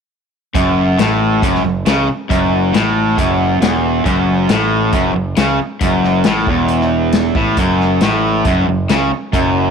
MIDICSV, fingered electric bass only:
0, 0, Header, 1, 3, 480
1, 0, Start_track
1, 0, Key_signature, 3, "minor"
1, 0, Tempo, 438917
1, 597, Time_signature, 4, 2, 24, 8
1, 10612, End_track
2, 0, Start_track
2, 0, Title_t, "Fingered electric bass"
2, 0, Program_c, 0, 33
2, 599, Note_on_c, 0, 30, 86
2, 1045, Note_off_c, 0, 30, 0
2, 1076, Note_on_c, 0, 33, 88
2, 1523, Note_off_c, 0, 33, 0
2, 1557, Note_on_c, 0, 30, 83
2, 1780, Note_off_c, 0, 30, 0
2, 1792, Note_on_c, 0, 30, 66
2, 2018, Note_off_c, 0, 30, 0
2, 2038, Note_on_c, 0, 37, 84
2, 2261, Note_off_c, 0, 37, 0
2, 2517, Note_on_c, 0, 30, 96
2, 2964, Note_off_c, 0, 30, 0
2, 2997, Note_on_c, 0, 33, 78
2, 3444, Note_off_c, 0, 33, 0
2, 3479, Note_on_c, 0, 30, 89
2, 3924, Note_off_c, 0, 30, 0
2, 3953, Note_on_c, 0, 28, 83
2, 4401, Note_off_c, 0, 28, 0
2, 4434, Note_on_c, 0, 30, 93
2, 4881, Note_off_c, 0, 30, 0
2, 4916, Note_on_c, 0, 33, 88
2, 5362, Note_off_c, 0, 33, 0
2, 5388, Note_on_c, 0, 30, 82
2, 5615, Note_off_c, 0, 30, 0
2, 5638, Note_on_c, 0, 30, 67
2, 5860, Note_off_c, 0, 30, 0
2, 5871, Note_on_c, 0, 37, 77
2, 6096, Note_off_c, 0, 37, 0
2, 6354, Note_on_c, 0, 30, 86
2, 6801, Note_off_c, 0, 30, 0
2, 6843, Note_on_c, 0, 33, 85
2, 7062, Note_off_c, 0, 33, 0
2, 7071, Note_on_c, 0, 28, 95
2, 7989, Note_off_c, 0, 28, 0
2, 8041, Note_on_c, 0, 33, 85
2, 8262, Note_off_c, 0, 33, 0
2, 8277, Note_on_c, 0, 30, 89
2, 8723, Note_off_c, 0, 30, 0
2, 8761, Note_on_c, 0, 33, 87
2, 9205, Note_off_c, 0, 33, 0
2, 9241, Note_on_c, 0, 30, 88
2, 9462, Note_off_c, 0, 30, 0
2, 9494, Note_on_c, 0, 30, 68
2, 9709, Note_off_c, 0, 30, 0
2, 9734, Note_on_c, 0, 37, 87
2, 9949, Note_off_c, 0, 37, 0
2, 10203, Note_on_c, 0, 30, 97
2, 10612, Note_off_c, 0, 30, 0
2, 10612, End_track
3, 0, Start_track
3, 0, Title_t, "Muted fingered electric bass strokes"
3, 2281, Note_on_c, 9, 29, 37
3, 2390, Note_off_c, 9, 29, 0
3, 6106, Note_on_c, 9, 29, 38
3, 6215, Note_off_c, 9, 29, 0
3, 9975, Note_on_c, 9, 29, 37
3, 10085, Note_off_c, 9, 29, 0
3, 10612, End_track
0, 0, End_of_file